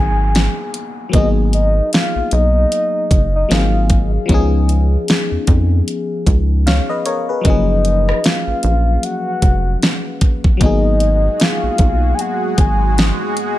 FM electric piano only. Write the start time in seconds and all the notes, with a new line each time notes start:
Already playing: F#3 A#3 B3 D#4 G#4
1.09 F#3 A#3
1.14 B3 D#4
1.18 G#4
3.49 F#3 A#3 C4 D#4
3.53 G#4
4.26 F3 B3
4.30 C#4 D#4
4.34 G#4
6.67 C#5 F5
6.89 B4 D#5
7.06 A#4 C#5
7.29 G#4 B4
7.41 F#3 A#3
7.46 F3 C#4
7.50 G#4
10.57 F#3 A#3
10.61 B3 D#4
10.66 G#4